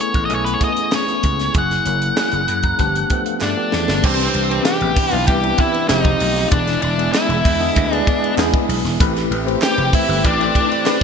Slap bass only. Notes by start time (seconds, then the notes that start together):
0.14 A1
0.30 B1
1.24 C#2
1.55 F#1
1.86 F#1
2.33 F#1
2.49 F#2
2.79 G1
3.42 G2
3.73 E2
3.89 G1
4.04 C2
4.34 C2
4.81 A1
5.13 B1
5.28 C2
5.90 F1
6.21 B1
6.52 E1
6.83 E1
7.29 E1
7.45 E2
7.77 D2
8.38 E2
8.69 B1
8.84 E1
9.00 A1
9.31 A1
9.78 F1
10.09 G1
10.24 A1